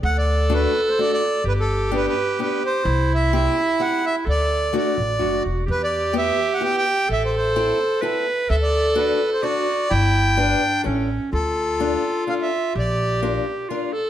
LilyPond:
<<
  \new Staff \with { instrumentName = "Accordion" } { \time 3/4 \key d \mixolydian \tempo 4 = 128 fis''16 d''8. b'8. c''16 d''16 d''8. | b'16 a'8. b'16 b'8. b'8 c''8~ | c''8 e''8 e''4 fis''8 e''8 | d''4 d''4. r8 |
b'16 d''8. e''8. fis''16 g''16 g''8. | e''16 c''16 c''4. r4 | e''16 d''8. b'8. c''16 d''4 | g''2 r4 |
\key d \minor a'2 f''16 e''8. | d''4 r2 | }
  \new Staff \with { instrumentName = "Clarinet" } { \time 3/4 \key d \mixolydian a'2. | g'2. | e'2. | a'4. r8 fis'4 |
g'2. | a'2 b'4 | a'2 fis'4 | e'4 d'4 cis'4 |
\key d \minor f'2. | g'2 f'8 a'8 | }
  \new Staff \with { instrumentName = "Steel-string acoustic guitar" } { \time 3/4 \key d \mixolydian r4 <a d' fis'>8 r8 <a d' fis'>8 r8 | r4 <b d' g'>8 r8 <b d' g'>8 r8 | r4 <c' e' g'>8 r8 <c' e' g'>8 r8 | r4 <a d' fis'>8 r8 <a d' fis'>8 r8 |
r4 <b e' g'>8 r8 <b e' g'>8 r8 | r4 <c' e' a'>8 r8 <c' e' a'>8 r8 | r4 <d' fis' a'>8 r8 <d' fis' a'>8 r8 | r4 <d' g' b'>8 r8 <cis' e' a'>8 r8 |
\key d \minor r4 <d' f' a'>8 r8 <d' f' a'>8 r8 | r4 <d' f' bes'>8 r8 <d' f' bes'>8 r8 | }
  \new Staff \with { instrumentName = "Upright bass" } { \clef bass \time 3/4 \key d \mixolydian d,2 r4 | g,,2 r4 | c,2 r4 | d,4. a,,8 fis,,8 e,,8 |
e,2 r4 | a,,2 r4 | d,2 r4 | g,,2 a,,4 |
\key d \minor d,2 r4 | bes,,2 r4 | }
>>